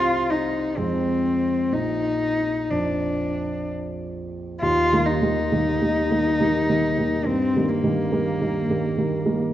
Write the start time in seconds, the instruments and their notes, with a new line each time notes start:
Already playing: grand piano C2 G3 C4, cello F4
0.30 cello D#4
0.77 grand piano F2 G#3 C4, cello C4
1.72 grand piano A#1, cello D#4
2.71 grand piano F2, cello D4
4.62 grand piano D#2, cello F4
4.92 grand piano D#3 G3 A#3
5.06 cello D#4
5.21 grand piano D#3 G3 A#3
5.52 grand piano D#3 G3 A#3
5.81 grand piano D#3 G3 A#3
6.11 grand piano D#3 G3 A#3
6.40 grand piano D#3 G3 A#3
6.69 grand piano D#3 G3 A#3
6.97 grand piano D#3 G3 A#3
7.26 grand piano G2, cello C4
7.56 grand piano D#3 G3 A#3
7.70 cello A#3
7.83 grand piano D#3 G3 A#3
8.12 grand piano D#3 G3 A#3
8.41 grand piano D#3 G3 A#3
8.69 grand piano D#3 G3 A#3
8.97 grand piano D#3 G3 A#3
9.25 grand piano D#3 G3 A#3